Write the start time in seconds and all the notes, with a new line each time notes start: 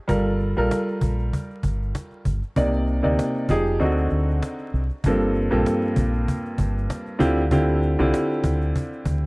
0.08 G1 G3 F4 A4 A#4, cajon bass
0.26 cajon slap
0.40 cajon slap
0.56 A#1 G3 F4 A4 A#4, cajon slap
0.71 cajon slap
0.89 cajon slap
1.01 A#1, cajon bass
1.19 cajon slap
1.33 cajon bass
1.50 cajon slap
1.63 G1, cajon bass
1.83 cajon slap
1.95 cajon slap
2.11 cajon slap
2.25 G1, cajon bass
2.42 cajon slap
2.56 C2 C3 A#3 D#4 D5, cajon bass
2.73 cajon slap
2.88 cajon slap
3.03 D2 C3 A#3 D#4 D5, cajon slap
3.19 cajon slap
3.37 cajon slap
3.49 F1 F3 D#4 G4 G#4, cajon bass
3.66 cajon slap
3.79 D2 D3 C4 D#4 F#4, cajon slap
3.98 cajon slap
4.10 D2, cajon slap
4.30 cajon slap
4.43 cajon slap
4.59 cajon slap
4.74 C2, cajon slap
4.90 cajon slap
5.04 G1 G2 F3 A#3 C4 A4, cajon bass
5.20 cajon slap
5.35 cajon slap
5.51 A#1 G2 F3 A#3 C4 A4, cajon slap
5.66 cajon slap
5.84 cajon slap
5.96 A#1, cajon bass
6.14 cajon slap
6.28 cajon bass
6.45 cajon slap
6.58 G1, cajon bass
6.78 cajon slap
6.90 cajon slap
7.06 cajon slap
7.19 D2 D3 C4 E4 F4 G4, cajon bass
7.37 cajon slap
7.51 D3 C4 E4 F4 G4, cajon bass
7.68 cajon slap
7.82 cajon slap
7.99 C2 D3 C4 E4 F4 G4, cajon slap
8.14 cajon slap
8.32 cajon slap
8.44 D2, cajon bass
8.61 cajon slap
8.76 cajon bass
8.92 cajon slap
9.06 D2, cajon bass